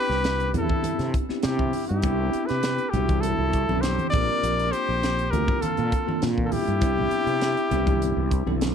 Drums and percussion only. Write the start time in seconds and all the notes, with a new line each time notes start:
0.11 snare
0.24 snare, closed hi-hat
0.40 closed hi-hat
0.54 closed hi-hat, high conga, low conga
0.69 kick, high conga
0.84 closed hi-hat, high conga
0.99 snare, closed hi-hat
1.14 kick, closed hi-hat
1.29 snare
1.43 snare, closed hi-hat
1.59 kick, high conga
1.73 open hi-hat
1.89 closed hi-hat
2.02 kick, closed hi-hat
2.33 closed hi-hat
2.49 snare, closed hi-hat
2.63 snare, closed hi-hat
2.78 closed hi-hat
2.93 closed hi-hat, low conga
3.08 kick, closed hi-hat, high conga
3.23 closed hi-hat, high conga
3.53 kick, closed hi-hat
3.69 high conga
3.83 snare, closed hi-hat
3.99 closed hi-hat, high conga
4.14 kick, closed hi-hat, low conga
4.44 closed hi-hat
4.60 closed hi-hat
4.73 closed hi-hat
5.03 snare, closed hi-hat
5.19 closed hi-hat
5.33 closed hi-hat, high conga, low conga
5.48 kick, high conga
5.62 closed hi-hat, high conga
5.77 closed hi-hat
5.92 kick, closed hi-hat
6.09 high conga
6.22 snare, closed hi-hat
6.38 kick, high conga
6.52 open hi-hat, low conga
6.67 closed hi-hat
6.81 kick, closed hi-hat
6.98 low conga
7.11 closed hi-hat
7.27 closed hi-hat
7.41 snare, closed hi-hat
7.57 closed hi-hat
7.71 closed hi-hat, low conga
7.87 kick, closed hi-hat, high conga
8.02 closed hi-hat, high conga
8.31 kick, closed hi-hat
8.47 high conga
8.61 snare, closed hi-hat